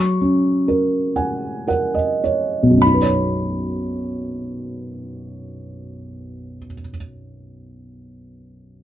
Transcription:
0.00 2.76 F#3 soft
0.00 2.19 C#6 medium
0.21 2.19 C#4 soft
0.68 1.66 A#4 soft
1.16 1.67 F#5 soft
1.16 1.64 G#5 soft
1.68 2.78 A#4 soft
1.68 1.93 F#5 medium
1.94 2.21 D#5 medium
2.24 2.81 C#5 soft
2.63 6.57 B1 soft
2.71 6.64 F#2 soft
2.78 6.71 F#3 soft
2.82 6.76 B5 medium
2.86 6.80 D#4 soft
2.94 6.88 B4 soft
3.02 6.96 C#5 soft

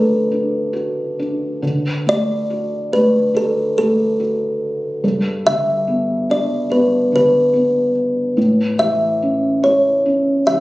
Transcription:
0.00 1.59 D3 medium
0.00 1.58 A3 soft
0.00 0.31 D4 soft
0.00 0.71 F#4 soft
0.00 1.16 A4 medium
0.31 1.18 D4 soft
0.73 1.59 F#4 medium
1.19 1.61 D4 medium
1.62 4.99 D3 medium
2.06 2.91 A3 soft
2.06 2.89 D5 medium
2.50 3.33 F#4 medium
2.92 3.77 A3 soft
2.92 3.32 B4 medium
3.34 4.18 F#4 soft
3.34 3.55 A4 medium
3.78 5.00 A3 soft
3.78 4.58 A4 medium
4.20 5.01 F#4 soft
5.04 8.33 G2 medium
5.46 7.08 D3 soft
5.46 6.32 E5 medium
5.88 6.69 B3 soft
6.30 7.91 D4 soft
6.30 6.73 D5 medium
6.70 7.52 B3 medium
6.70 6.90 B4 medium
7.12 8.33 D3 soft
7.12 7.93 B4 medium
7.54 8.35 B3 medium
8.37 10.60 A2 medium
8.79 10.44 E3 soft
8.79 9.66 E5 medium
9.22 10.04 C#4 soft
9.63 10.60 E4 soft
9.63 9.82 C#5 medium
10.06 10.60 C#4 medium
10.47 10.60 E3 soft
10.47 10.60 E5 loud

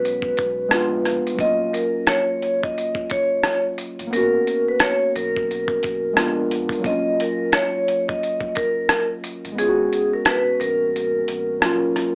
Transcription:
0.00 0.33 B1 medium
0.00 0.64 G#3 medium
0.00 0.66 B3 medium
0.00 0.68 C#4 medium
0.00 0.69 F#4 medium
0.00 1.35 B4 medium
0.05 closed hi-hat medium
0.22 kick medium
0.37 0.69 B1 medium
0.37 kick medium
0.37 closed hi-hat medium
0.68 1.21 A#1 medium
0.68 1.38 G#3 medium
0.68 1.38 B3 medium
0.68 1.39 D4 medium
0.68 cross-stick loud
0.68 closed hi-hat medium
0.73 1.40 F4 medium
1.05 cross-stick soft
1.05 closed hi-hat medium
1.26 1.38 E1 medium
1.26 closed hi-hat soft
1.34 4.05 F#3 medium
1.34 4.06 A#3 medium
1.38 1.70 D#1 loud
1.38 4.08 C#4 medium
1.38 1.70 D#5 loud
1.38 kick loud
1.38 closed hi-hat medium
1.44 4.10 F4 medium
1.73 2.04 A#4 medium
1.73 closed hi-hat medium
2.07 2.59 C#5 medium
2.07 cross-stick loud
2.07 closed hi-hat medium
2.42 3.06 F#1 medium
2.42 closed hi-hat soft
2.63 3.07 D#5 medium
2.63 kick medium
2.78 closed hi-hat medium
2.95 kick medium
3.10 3.42 F#1 medium
3.10 3.62 C#5 medium
3.10 kick medium
3.10 closed hi-hat medium
3.44 cross-stick loud
3.44 closed hi-hat medium
3.78 closed hi-hat medium
3.99 4.11 A1 medium
3.99 closed hi-hat soft
4.07 6.10 A#3 medium
4.07 6.11 B3 medium
4.13 4.43 G#1 loud
4.13 6.13 C#4 medium
4.13 4.64 A#4 medium
4.13 closed hi-hat medium
4.17 6.15 F#4 medium
4.47 closed hi-hat medium
4.68 4.80 B4 medium
4.80 5.11 C#5 medium
4.80 cross-stick loud
4.80 closed hi-hat medium
5.15 5.79 B1 medium
5.15 6.81 A#4 medium
5.15 closed hi-hat medium
5.36 kick medium
5.51 closed hi-hat medium
5.68 kick medium
5.83 6.14 B1 medium
5.83 kick medium
5.83 closed hi-hat medium
6.13 6.83 G#3 medium
6.13 6.84 B3 medium
6.13 6.84 D4 medium
6.13 cross-stick loud
6.17 6.67 A#1 loud
6.17 6.85 F4 medium
6.17 closed hi-hat medium
6.51 closed hi-hat medium
6.69 6.82 E1 medium
6.69 kick medium
6.69 closed hi-hat soft
6.79 9.50 F#3 medium
6.79 9.52 A#3 medium
6.84 7.16 D#1 loud
6.84 9.54 C#4 medium
6.84 7.16 D#5 medium
6.84 kick loud
6.84 closed hi-hat medium
6.89 9.55 F4 medium
7.20 7.50 A#4 medium
7.20 closed hi-hat medium
7.52 8.04 C#5 medium
7.52 cross-stick loud
7.52 closed hi-hat medium
7.88 8.51 F#1 medium
7.88 closed hi-hat medium
8.08 8.53 D#5 medium
8.08 kick medium
8.23 closed hi-hat medium
8.41 kick medium
8.55 8.87 F#1 medium
8.55 9.07 A#4 medium
8.55 kick medium
8.55 closed hi-hat medium
8.89 cross-stick loud
8.89 closed hi-hat medium
9.24 closed hi-hat medium
9.44 9.56 A1 medium
9.44 closed hi-hat soft
9.51 11.55 G#3 medium
9.51 11.56 B3 medium
9.58 9.89 G#1 loud
9.58 11.58 C#4 medium
9.58 9.67 F4 medium
9.58 10.09 G#4 loud
9.58 closed hi-hat medium
9.68 11.63 F#4 medium
9.93 closed hi-hat medium
10.13 10.25 A#4 medium
10.25 10.57 B4 medium
10.25 cross-stick loud
10.25 closed hi-hat medium
10.60 11.24 A#1 medium
10.60 12.15 A#4 medium
10.60 closed hi-hat soft
10.96 closed hi-hat medium
11.28 11.59 A#1 medium
11.28 closed hi-hat medium
11.60 11.81 D#1 loud
11.60 12.15 F#3 medium
11.60 12.15 A#3 medium
11.60 12.15 C#4 medium
11.60 cross-stick loud
11.60 closed hi-hat medium
11.65 12.15 F4 medium
11.83 11.95 F1 loud
11.96 12.15 E1 loud
11.96 cross-stick soft
11.96 closed hi-hat medium

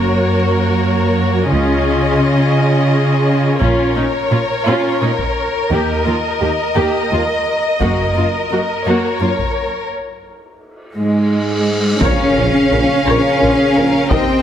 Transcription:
0.00 1.47 F#2 soft
0.00 1.47 A#3 soft
0.00 1.48 F#4 soft
0.00 1.47 A#4 soft
0.00 1.47 C#5 soft
1.50 2.17 C#2 soft
1.50 3.57 C#3 soft
1.50 3.57 C#4 soft
1.50 3.57 F4 soft
1.50 3.58 G#4 soft
1.50 3.62 D#5 soft
3.61 3.94 A#1 medium
3.61 3.69 A#2 soft
3.61 3.94 C#4 medium
3.61 3.94 F4 medium
3.61 7.78 A#4 soft
3.61 5.68 C#5 soft
3.61 taiko soft
3.96 4.04 A#2 soft
3.96 4.05 C#4 soft
3.96 4.04 D#4 soft
4.31 4.39 A#2 soft
4.31 4.40 C#4 soft
4.31 4.40 F4 soft
4.67 4.75 A#2 medium
4.67 5.00 C#4 medium
4.67 4.99 F4 medium
5.01 5.10 A#2 soft
5.01 5.09 C#4 soft
5.01 5.09 D#4 soft
5.18 taiko soft
5.71 6.04 D#2 soft
5.71 5.79 D#2 soft
5.71 6.04 A#3 soft
5.71 6.04 G4 soft
5.71 8.86 D#5 soft
6.06 6.14 D#2 soft
6.06 6.14 A#3 soft
6.06 6.14 F4 soft
6.40 6.49 D#2 soft
6.40 6.48 A#3 soft
6.40 6.48 G4 soft
6.76 6.84 D#2 soft
6.76 7.08 A#3 medium
6.76 7.08 G4 medium
7.11 7.19 D#2 soft
7.11 7.20 A#3 soft
7.11 7.20 F4 soft
7.80 8.14 F#1 soft
7.80 7.89 F#2 soft
7.80 8.14 A#3 soft
7.80 8.14 F#4 soft
7.80 9.87 A#4 soft
7.80 taiko soft
8.15 8.23 F#2 soft
8.15 8.24 A#3 soft
8.15 8.24 F4 soft
8.51 8.59 F#2 soft
8.51 8.60 A#3 soft
8.51 8.60 F#4 soft
8.85 8.93 F#2 soft
8.85 9.19 A#3 soft
8.85 9.18 F#4 soft
8.85 9.91 C#5 soft
9.20 9.28 F#2 soft
9.20 9.29 A#3 soft
9.20 9.29 F4 soft
9.39 taiko soft
9.91 cymbal swell soft
10.95 11.97 G#2 soft
10.95 11.97 G#3 soft
12.00 12.15 A#1 soft
12.00 12.10 A#1 soft
12.00 14.11 C#3 medium
12.00 14.07 C#4 medium
12.00 14.11 C#4 medium
12.00 12.34 A#4 soft
12.00 12.34 C#5 soft
12.00 14.07 F5 soft
12.00 taiko medium
12.00 impact medium
12.36 12.50 A#1 soft
12.36 12.45 A#1 soft
12.36 12.44 F4 soft
12.36 12.45 A#4 soft
12.71 12.85 A#1 soft
12.71 12.80 A#1 soft
12.71 12.80 A#4 soft
13.06 13.20 A#1 medium
13.06 13.14 A#1 medium
13.06 13.39 A#4 medium
13.06 13.39 A#4 soft
13.06 13.39 C#5 medium
13.41 13.55 A#1 soft
13.41 13.49 A#1 soft
13.41 13.50 F4 soft
13.41 13.76 G#4 soft
13.41 13.49 A#4 soft
13.75 13.90 A#1 soft
13.75 13.84 A#1 soft
13.75 13.84 A#4 soft
13.75 14.11 A#4 soft
14.10 14.25 D#2 medium
14.10 14.19 D#2 medium
14.10 14.42 C3 medium
14.10 14.42 C4 medium
14.10 14.42 A#4 soft
14.10 14.42 C5 soft
14.10 14.42 D#5 soft
14.10 14.42 G5 medium
14.10 taiko medium

